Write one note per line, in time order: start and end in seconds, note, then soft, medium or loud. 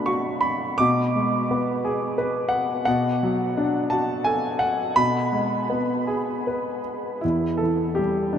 0.00 0.74 B2 medium
0.00 0.39 F#3 soft
0.00 0.74 A3 soft
0.00 0.76 D4 soft
0.00 0.79 F#5 medium
0.00 0.41 B5 medium
0.06 0.76 F#4 soft
0.06 0.39 C#6 medium
0.41 0.78 B5 medium
0.78 2.84 B2 medium
0.78 2.13 D6 medium
1.16 2.49 G#3 soft
1.51 2.84 B3 soft
1.85 2.84 G#4 soft
2.18 2.85 B4 medium
2.49 2.84 F#5 medium
2.85 4.94 B2 medium
2.85 3.94 F#5 medium
3.23 4.59 F#3 medium
3.57 4.94 D4 medium
3.90 4.94 F#4 soft
3.90 4.27 A5 medium
4.24 4.95 A4 medium
4.24 4.62 G#5 medium
4.59 4.93 F#5 medium
4.96 7.19 B2 medium
4.96 6.80 B5 medium
5.32 6.81 G#3 soft
5.70 7.19 B3 soft
6.07 7.20 G#4 soft
6.47 7.21 B4 soft
7.21 8.38 E2 soft
7.21 7.61 E4 medium
7.58 7.98 A4 medium
7.62 8.34 E3 soft
7.95 8.36 G4 medium
7.99 8.38 G3 soft
8.33 8.38 D4 soft